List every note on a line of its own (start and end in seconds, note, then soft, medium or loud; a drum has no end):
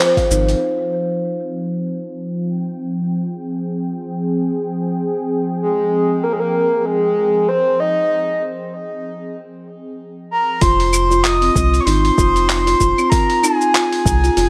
0.00 0.61 F3 medium
0.00 0.62 C4 medium
0.00 0.65 A#4 medium
0.00 0.16 C5 loud
0.00 0.62 G5 medium
0.00 cabasa soft
0.17 0.30 F5 medium
0.17 kick medium
0.17 open hi-hat soft
0.17 cabasa soft
0.31 0.55 G#1 medium
0.31 0.48 D#4 medium
0.31 cabasa medium
0.49 open hi-hat soft
0.49 cabasa soft
0.62 10.62 F3 medium
1.22 10.62 C4 medium
2.42 10.62 G5 medium
3.16 10.62 G#4 medium
5.62 6.25 G#4 medium
6.23 6.34 A#4 medium
6.33 6.41 G#4 medium
6.40 6.81 A#4 medium
6.81 6.87 A#4 medium
6.85 7.50 G#4 loud
7.48 7.81 C5 loud
7.80 8.43 D#5 loud
10.31 10.63 A#5 medium
10.61 11.50 F1 loud
10.61 11.09 F4 medium
10.61 11.25 C6 loud
10.61 kick loud
10.61 open hi-hat medium
10.61 cabasa soft
10.80 open hi-hat soft
10.93 cabasa medium
10.93 claves medium
11.11 11.23 F4 medium
11.11 cabasa soft
11.23 11.82 D#6 loud
11.23 clap loud
11.23 open hi-hat medium
11.23 cabasa soft
11.42 11.55 C4 medium
11.42 open hi-hat soft
11.56 11.80 C2 medium
11.56 kick loud
11.56 cabasa medium
11.74 open hi-hat soft
11.74 cabasa soft
11.80 11.87 C#6 medium
11.85 12.11 G#1 medium
11.85 12.03 D#4 medium
11.85 13.09 C6 loud
11.85 open hi-hat medium
11.85 cabasa soft
12.05 open hi-hat soft
12.18 12.75 F1 medium
12.18 12.65 F4 medium
12.18 kick loud
12.18 cabasa medium
12.36 open hi-hat soft
12.36 cabasa soft
12.49 clap loud
12.49 open hi-hat medium
12.49 cabasa soft
12.67 12.79 F4 medium
12.67 open hi-hat soft
12.67 cabasa soft
12.80 12.94 F1 medium
12.80 12.96 F4 medium
12.80 kick medium
12.80 cabasa medium
12.98 13.11 C4 medium
12.98 cabasa soft
12.98 claves medium
13.10 13.42 A#5 loud
13.10 kick loud
13.10 open hi-hat medium
13.10 cabasa medium
13.30 open hi-hat soft
13.40 13.60 D#4 medium
13.40 14.49 G#5 loud
13.40 cabasa medium
13.40 claves medium
13.61 cabasa soft
13.74 14.21 F4 medium
13.74 clap loud
13.74 open hi-hat medium
13.74 cabasa soft
13.93 open hi-hat soft
14.06 14.30 C2 medium
14.06 kick loud
14.06 cabasa medium
14.24 14.36 F4 medium
14.24 open hi-hat soft
14.24 cabasa soft
14.37 14.49 F1 medium
14.37 14.49 F4 loud
14.37 open hi-hat medium
14.37 cabasa soft